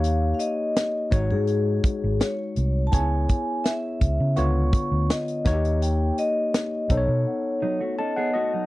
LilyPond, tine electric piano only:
\new Staff \with { instrumentName = "Tine electric piano" } { \time 4/4 \key cis \minor \tempo 4 = 83 <ais dis' g' cis''>4 r8 <gis dis' fis' cis''>4. r4 | <b dis' e' gis' cis''>4. r8 <d b eis' cis''>4. <ais dis' fis' g' cis''>8~ | <ais dis' fis' g' cis''>4 r8 <b dis' a' bis' cis''>4. a''16 fis''16 dis''8 | }